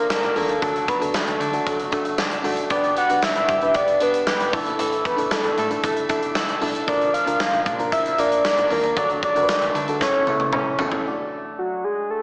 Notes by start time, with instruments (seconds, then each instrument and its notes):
Already playing: clean electric guitar F3 A#3, fm electric piano D4 F4 A4 A#4
0.10 clean electric guitar D4, soft synth lead A#4, snare, tambourine
0.23 fm bass A#1, closed hi-hat
0.36 fm bass E2, clean electric guitar A#3, fm electric piano D4 F4 A#4, soft synth lead A4, open hi-hat
0.49 fm bass D#2, closed hi-hat
0.61 fm bass D2, clean electric guitar F#3 D4, fm electric piano D4 F#4 A4, soft synth lead A4, kick, closed hi-hat
0.76 closed hi-hat
0.88 clean electric guitar F#3, soft synth lead B4, kick, closed hi-hat
1.00 fm bass D2, fm electric piano D4 F#4 A4, closed hi-hat
1.14 clean electric guitar A3, soft synth lead A4, snare, tambourine
1.27 fm bass D2, closed hi-hat
1.40 fm bass D3, clean electric guitar D4, closed hi-hat
1.53 fm electric piano D4 F#4 A4, closed hi-hat
1.67 fm bass D2, clean electric guitar F#3, kick, closed hi-hat
1.80 closed hi-hat
1.91 clean electric guitar A3, fm electric piano D4 F#4 A4, kick, closed hi-hat
2.05 closed hi-hat
2.18 clean electric guitar D4, snare, tambourine
2.31 closed hi-hat
2.43 fm bass G#1, clean electric guitar A3, fm electric piano D4 F#4 A4, open hi-hat
2.57 closed hi-hat
2.70 fm bass G1, clean electric guitar B3 G4, fm electric piano D4 G4 B4, soft synth lead D5, kick, closed hi-hat
2.84 closed hi-hat
2.97 clean electric guitar B3, soft synth lead F#5, closed hi-hat
3.09 fm bass B1, fm electric piano D4 G4 B4, closed hi-hat
3.22 clean electric guitar D4, soft synth lead E5, snare, tambourine
3.36 fm bass G1, closed hi-hat
3.48 fm bass G2, clean electric guitar G4, kick, closed hi-hat
3.61 fm electric piano D4 G4 B4, closed hi-hat
3.74 fm bass G1, clean electric guitar B3, soft synth lead D5, kick, closed hi-hat
3.88 closed hi-hat
4.00 fm electric piano D4 G4 B4, clean electric guitar D4, soft synth lead B4, closed hi-hat
4.14 closed hi-hat
4.27 clean electric guitar G4, soft synth lead B4, snare, tambourine
4.40 fm bass G1, closed hi-hat
4.52 fm bass A1, clean electric guitar E3, fm electric piano D4 E4 A4, soft synth lead A4, kick, open hi-hat
4.67 fm bass A#1, closed hi-hat
4.79 fm bass A1, clean electric guitar E3 A4, soft synth lead A4, closed hi-hat
4.92 closed hi-hat
5.05 clean electric guitar A3, soft synth lead B4, kick, closed hi-hat
5.17 fm bass A1, fm electric piano D4 E4 A4, closed hi-hat
5.31 clean electric guitar D4, soft synth lead A4, snare, tambourine
5.44 fm bass A1, closed hi-hat
5.58 fm bass A2, clean electric guitar A4, closed hi-hat
5.70 fm electric piano D4 E4 A4, closed hi-hat
5.84 fm bass A1, clean electric guitar A3, kick, closed hi-hat
5.97 closed hi-hat
6.09 fm electric piano D4 E4 A4, clean electric guitar D4, kick, closed hi-hat
6.23 closed hi-hat
6.35 clean electric guitar A4, snare, tambourine
6.49 closed hi-hat
6.61 fm bass B1, fm electric piano D4 E4 A4, clean electric guitar D4, open hi-hat
6.75 closed hi-hat
6.87 fm bass A#1, clean electric guitar F3 D4, fm electric piano D4 F4 A#4, soft synth lead D5, kick, closed hi-hat
7.01 closed hi-hat
7.14 clean electric guitar F3, soft synth lead F5, closed hi-hat
7.26 fm bass D2, fm electric piano D4 F4 A#4, closed hi-hat
7.40 clean electric guitar A#3, snare, tambourine
7.53 fm bass A#1, closed hi-hat
7.66 fm bass A#2, clean electric guitar D4, kick, closed hi-hat
7.79 fm electric piano D4 F4 A#4, closed hi-hat
7.92 fm bass A#1, clean electric guitar F3, soft synth lead E5, kick, closed hi-hat
8.06 closed hi-hat
8.18 clean electric guitar A#3, fm electric piano D4 F4 A#4, soft synth lead D5, closed hi-hat
8.32 closed hi-hat
8.45 clean electric guitar D4, snare, tambourine
8.57 fm bass A#1, closed hi-hat
8.70 fm bass E2, clean electric guitar A#3, fm electric piano D4 F4 A#4, soft synth lead A#4, open hi-hat
8.83 fm bass D#2, closed hi-hat
8.95 fm bass D2, clean electric guitar F#3 D4, fm electric piano D4 F#4 A4, soft synth lead D5, kick, closed hi-hat
9.10 closed hi-hat
9.23 clean electric guitar F#3, soft synth lead D5, kick, closed hi-hat
9.35 fm bass D2, fm electric piano D4 F#4 A#4, closed hi-hat
9.43 fm electric piano B4
9.49 clean electric guitar A3, snare, tambourine
9.61 fm bass D2, closed hi-hat
9.75 fm bass D3, clean electric guitar D4, closed hi-hat
9.88 fm electric piano D4 F#4 A4, closed hi-hat
10.01 fm bass A1, clean electric guitar E3, fm electric piano C#4 E4 A4, soft synth lead C#5, kick, snare
10.27 fm bass B1, clean electric guitar A3, fm electric piano C#4 E4 A4, high tom
10.40 high tom
10.53 fm bass A1, clean electric guitar C#4, mid tom
10.79 fm bass D#2, clean electric guitar A3, fm electric piano C#4 E4 A4, floor tom
10.92 floor tom
11.05 fm electric piano A3 D4 F#4 D5
11.58 soft synth lead F#4
11.84 soft synth lead G#4
12.10 soft synth lead A4